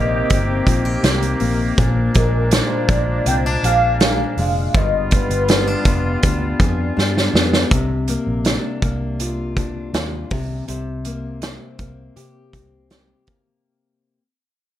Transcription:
Already playing: fingered electric bass A#1, steel-string acoustic guitar C3 A#3 C4, woodwind section D#3 A#3 C4 G4, soft synth lead D#5
0.30 fingered electric bass G1, steel-string acoustic guitar C4, kick, closed hi-hat
0.66 fingered electric bass A#1, steel-string acoustic guitar F4, kick, closed hi-hat
0.85 steel-string acoustic guitar G4
1.03 fingered electric bass C2, steel-string acoustic guitar C4, snare, closed hi-hat
1.22 closed hi-hat
1.40 fingered electric bass A#1, steel-string acoustic guitar A#3, open hi-hat
1.76 fingered electric bass A#1, steel-string acoustic guitar A#2, woodwind section F3 D4, kick, closed hi-hat
2.14 fingered electric bass A#1, steel-string acoustic guitar G#3, soft synth lead A#4, kick, closed hi-hat
2.51 steel-string acoustic guitar D4, soft synth lead C5, snare, closed hi-hat
2.88 fingered electric bass A#1, steel-string acoustic guitar G#3, soft synth lead D5, kick, closed hi-hat
3.26 fingered electric bass C2, steel-string acoustic guitar C4, soft synth lead G5, closed hi-hat
3.46 steel-string acoustic guitar D4
3.63 fingered electric bass A#1, steel-string acoustic guitar G#4, soft synth lead F5, closed hi-hat
4.00 steel-string acoustic guitar D4, snare, closed hi-hat
4.37 fingered electric bass F1, steel-string acoustic guitar G#3, soft synth lead F5, open hi-hat
4.74 fingered electric bass G1, steel-string acoustic guitar G2, woodwind section G3 B3 F4, soft synth lead D#5, kick, closed hi-hat
5.11 steel-string acoustic guitar B3, soft synth lead B4, kick, closed hi-hat
5.29 fingered electric bass G1, closed hi-hat
5.48 steel-string acoustic guitar C4, snare, closed hi-hat
5.67 steel-string acoustic guitar D4
5.85 fingered electric bass F1, steel-string acoustic guitar B3, kick, closed hi-hat
6.23 fingered electric bass D2, steel-string acoustic guitar D4, kick, closed hi-hat
6.60 fingered electric bass F2, steel-string acoustic guitar G#4, kick, closed hi-hat
6.97 fingered electric bass G2, steel-string acoustic guitar D4, snare
7.17 snare
7.34 fingered electric bass F2, steel-string acoustic guitar B3, snare
7.53 snare
7.71 fingered electric bass C2, steel-string acoustic guitar C3, kick, closed hi-hat
8.08 steel-string acoustic guitar A#3, closed hi-hat
8.27 fingered electric bass A#1
8.45 steel-string acoustic guitar D4, snare, closed hi-hat
8.82 fingered electric bass C2, steel-string acoustic guitar A#3, kick, closed hi-hat
9.20 steel-string acoustic guitar F4, closed hi-hat
9.57 steel-string acoustic guitar D4, kick, closed hi-hat
9.94 fingered electric bass D#2, steel-string acoustic guitar F4, snare, closed hi-hat
10.30 fingered electric bass C2, steel-string acoustic guitar C3, kick, open hi-hat
10.68 fingered electric bass C2, steel-string acoustic guitar C3, closed hi-hat
11.05 steel-string acoustic guitar A#3, closed hi-hat
11.42 steel-string acoustic guitar C4, snare, closed hi-hat
11.79 fingered electric bass C2, steel-string acoustic guitar A#3, kick, closed hi-hat
12.16 fingered electric bass C3, steel-string acoustic guitar G4, closed hi-hat
12.53 fingered electric bass C2, steel-string acoustic guitar C4, kick, closed hi-hat
12.90 steel-string acoustic guitar G4, snare, closed hi-hat
13.27 steel-string acoustic guitar A#3, kick, closed hi-hat

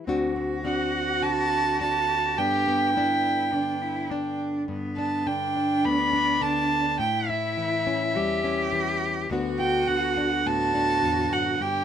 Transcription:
0.07 nylon-string guitar D2 C4 D4 F#4, cello F#4
0.36 nylon-string guitar C4
0.65 nylon-string guitar C4 D4 F#4, fiddle F#5
1.22 nylon-string guitar D3, fiddle A5
1.80 nylon-string guitar D4, fiddle A5
2.37 nylon-string guitar G2 B3 D4, cello G4, fiddle G5
2.68 nylon-string guitar B3
2.95 nylon-string guitar B3 D4, cello E4
3.52 nylon-string guitar D3, cello D4
3.82 cello E4
4.10 cello D4, nylon-string guitar D4
4.68 nylon-string guitar G2, cello B3
4.97 nylon-string guitar D4, fiddle A5
5.26 nylon-string guitar D3, cello D4, fiddle G5
5.56 nylon-string guitar D4
5.84 nylon-string guitar D2 B3, fiddle B5
6.13 nylon-string guitar D4
6.41 nylon-string guitar D3, fiddle A5
6.99 nylon-string guitar A2, cello E4, fiddle G5
7.28 nylon-string guitar E4, fiddle E5
7.57 nylon-string guitar E3
7.87 nylon-string guitar C#4
8.15 nylon-string guitar E2 G3, cello G4
8.44 nylon-string guitar C#4
8.73 nylon-string guitar E3
9.30 nylon-string guitar D2 D3 B3 D4 F#4, cello F#4
9.58 nylon-string guitar F#4, fiddle G5
9.88 nylon-string guitar D3, fiddle F#5
10.17 nylon-string guitar D4
10.46 nylon-string guitar A2 B3, cello F#4, fiddle A5
10.75 nylon-string guitar D4
11.03 nylon-string guitar E2
11.31 nylon-string guitar F#2, fiddle F#5
11.60 nylon-string guitar G2, cello G4, fiddle G5

